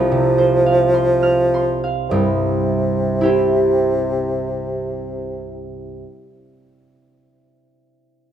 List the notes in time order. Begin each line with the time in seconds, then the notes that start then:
Already playing: C2 C3 F3 C5 F5 C6 F6
0.12 C3
0.38 C5
0.66 F5
0.94 C6
1.23 F6
1.54 C6
1.84 F5
2.09 C2 G2 C3
3.21 E4 G4
3.25 C5